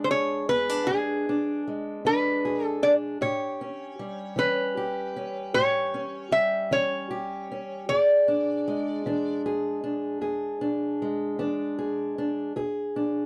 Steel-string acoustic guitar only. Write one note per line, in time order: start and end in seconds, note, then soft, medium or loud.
0.00 0.42 E3 medium
0.00 1.66 G#3 medium
0.00 0.49 D4 medium
0.11 2.44 G#4 medium
0.49 0.69 B3 medium
0.69 0.89 D4 soft
0.89 1.59 E2 medium
0.89 1.28 D4 medium
1.29 2.05 D4 medium
1.67 3.18 G#3 medium
2.05 2.75 E3 medium
2.05 2.81 D4 medium
2.45 3.18 G#4 medium
2.83 3.17 D4 medium
3.21 3.92 A2 medium
3.21 4.76 G4 medium
3.61 4.37 C#4 medium
3.99 6.30 G3 medium
4.36 5.08 E3 medium
4.36 5.15 C#4 medium
4.77 5.55 G4 medium
5.16 5.93 C#4 medium
5.55 6.26 A2 medium
5.55 7.09 G4 medium
5.94 6.71 C#4 medium
6.32 7.88 G3 medium
6.71 7.42 E3 medium
6.71 7.50 C#4 medium
7.11 7.84 G4 medium
7.52 7.85 C#4 medium
7.89 8.59 E2 medium
7.89 9.45 G#4 medium
8.28 9.06 D4 medium
8.68 11.01 G#3 medium
9.06 9.76 E3 medium
9.06 9.83 D4 medium
9.46 10.21 G#4 medium
9.84 10.60 D4 medium
10.21 10.92 E2 medium
10.21 11.77 G#4 medium
10.61 11.38 D4 medium
11.02 12.52 G#3 medium
11.39 12.09 E3 medium
11.39 12.17 D4 medium
11.79 12.52 G#4 medium
12.18 12.52 D4 medium
12.56 13.26 E2 medium
12.56 13.26 G#4 medium
12.96 13.26 D4 medium